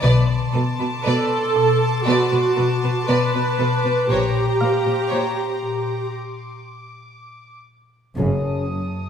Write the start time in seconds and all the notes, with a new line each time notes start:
0.03 B1 B2 B4 D5 A5 C6 D6
0.53 B2 B3 A4 B4
0.79 B2 B4
1.05 B2 B3 A4 B4 D5
1.56 B2
2.06 B2 B3 F#4 B4 D5
2.32 B2 B4
2.57 B2 A4 B4
2.84 B2 B4
3.09 B2 B4 D5
3.34 B2 B4
3.59 B2 A4 B4
3.84 B2 B4
4.09 A#1 A#2 G4 C5 C#5 A#5
4.61 A#2 A#3 A#4 C5 F5 F6
4.86 A#2 C5
5.12 A#2 A#3 C5 C#5
5.63 A#2
8.17 F#1 F#2 C#3 C#4 A5 D#6
8.67 F#3